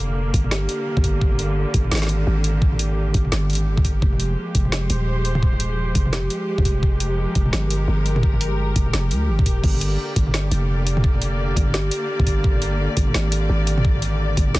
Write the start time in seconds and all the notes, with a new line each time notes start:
Already playing: F1 D3 A#3 G4
0.34 G1, kick, closed hi-hat
0.44 mid tom
0.51 G4, snare
0.69 closed hi-hat
0.97 G1, kick, mid tom
1.04 kick, closed hi-hat
1.21 kick
1.32 mid tom
1.39 closed hi-hat
1.74 G1, kick, closed hi-hat
1.84 mid tom
1.92 G#1, snare
1.95 snare
1.97 snare
2.02 snare
2.07 snare, closed hi-hat
2.27 G#1
2.44 closed hi-hat
2.62 kick
2.72 mid tom
2.79 closed hi-hat
3.14 G1, kick, closed hi-hat
3.25 mid tom
3.32 G1, snare
3.49 G#1, closed hi-hat
3.53 closed hi-hat
3.55 closed hi-hat
3.67 G1
3.77 kick, mid tom
3.85 kick, closed hi-hat
4.02 F1 F3, kick
4.07 G#3
4.13 mid tom
4.20 closed hi-hat
4.55 F1, kick, closed hi-hat
4.65 C5, mid tom
4.72 snare
4.90 D#1, closed hi-hat
5.25 closed hi-hat
5.35 mid tom
5.43 kick
5.53 mid tom
5.60 closed hi-hat
5.95 F1, kick, closed hi-hat
6.06 mid tom
6.11 G4, snare, mid tom
6.13 mid tom
6.16 mid tom
6.19 mid tom
6.30 closed hi-hat
6.58 F1, kick, mid tom
6.65 kick, closed hi-hat
6.83 kick
6.92 A#4
7.00 closed hi-hat
7.35 F1, kick, closed hi-hat
7.46 mid tom
7.53 G1, snare
7.71 closed hi-hat
7.88 G1
8.06 closed hi-hat
8.16 mid tom
8.23 kick
8.34 mid tom
8.41 closed hi-hat
8.76 F1, kick, closed hi-hat
8.86 mid tom
8.93 F1, snare
9.11 D2, closed hi-hat
9.28 G1
9.39 kick, mid tom
9.46 D#1, kick, closed hi-hat
9.64 G1 D3, kick, crash
9.74 mid tom
9.80 D5, closed hi-hat
9.84 A#3
10.16 G1, kick, closed hi-hat
10.27 mid tom
10.34 snare
10.51 F1, closed hi-hat
10.87 closed hi-hat
10.97 mid tom
11.04 kick
11.14 mid tom
11.22 closed hi-hat
11.56 G1, kick, closed hi-hat
11.67 mid tom
11.74 G4, snare
11.91 closed hi-hat
12.20 G1, kick, mid tom
12.27 kick, closed hi-hat
12.44 kick
12.55 mid tom
12.62 closed hi-hat
12.97 G1, kick, closed hi-hat
13.07 mid tom
13.14 G#1, snare
13.32 closed hi-hat
13.49 G#1
13.67 closed hi-hat
13.78 mid tom
13.85 kick
13.95 mid tom
14.02 closed hi-hat
14.37 G1, kick, closed hi-hat
14.48 mid tom
14.55 G1, snare